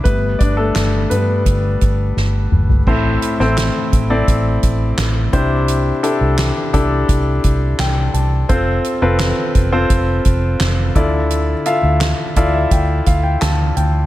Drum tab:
CC |----------------|x---------------|----------------|----------------|
HH |x-x-x-x-x-x-----|--x-x-x-x-x-x-x-|x-x-x-x-x-x-x-x-|x-x-x-x-x-x-x-x-|
CP |----x-----------|----x-------x---|----x-------x---|----x-------x---|
SD |----o-------o---|---oo-------o---|----o-------o---|----o-------o---|
T2 |--------------o-|----------------|----------------|----------------|
FT |---------------o|----------------|----------------|----------------|
BD |o-o-----o-o-----|o-----o-o-o---o-|------o-o-o-----|o-----o-o-o---o-|

CC |----------------|
HH |x-x-x-x-x-x-x-x-|
CP |----x-------x---|
SD |----o-------o---|
T2 |----------------|
FT |----------------|
BD |------o-o-o-----|